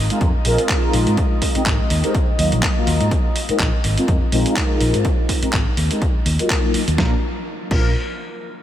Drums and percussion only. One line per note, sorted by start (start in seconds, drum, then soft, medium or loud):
0.10 closed hi-hat medium
0.21 kick loud
0.21 closed hi-hat soft
0.45 open hi-hat loud
0.58 closed hi-hat medium
0.69 kick loud
0.69 clap loud
0.69 closed hi-hat soft
0.93 open hi-hat loud
1.07 closed hi-hat medium
1.17 kick loud
1.17 closed hi-hat medium
1.42 kick medium
1.42 open hi-hat loud
1.55 closed hi-hat medium
1.66 kick loud
1.66 clap loud
1.66 closed hi-hat medium
1.90 open hi-hat loud
2.04 closed hi-hat medium
2.15 kick loud
2.15 closed hi-hat medium
2.39 open hi-hat loud
2.52 closed hi-hat medium
2.63 kick loud
2.63 clap loud
2.63 closed hi-hat medium
2.87 open hi-hat loud
3.01 closed hi-hat medium
3.11 kick loud
3.11 closed hi-hat medium
3.36 open hi-hat loud
3.49 closed hi-hat medium
3.60 kick loud
3.60 clap loud
3.60 closed hi-hat medium
3.84 open hi-hat loud
3.98 closed hi-hat medium
4.08 kick loud
4.08 closed hi-hat medium
4.32 open hi-hat medium
4.46 closed hi-hat medium
4.56 kick loud
4.56 clap loud
4.56 closed hi-hat medium
4.81 open hi-hat loud
4.94 closed hi-hat medium
5.05 kick loud
5.05 closed hi-hat medium
5.29 kick medium
5.29 open hi-hat loud
5.43 closed hi-hat medium
5.53 kick loud
5.53 clap loud
5.53 closed hi-hat medium
5.77 open hi-hat loud
5.91 closed hi-hat medium
6.02 kick loud
6.02 closed hi-hat medium
6.26 open hi-hat loud
6.39 closed hi-hat medium
6.50 kick loud
6.50 clap loud
6.50 closed hi-hat medium
6.74 open hi-hat loud
6.88 closed hi-hat medium
6.98 kick loud
6.98 snare medium
7.71 kick loud
7.71 crash medium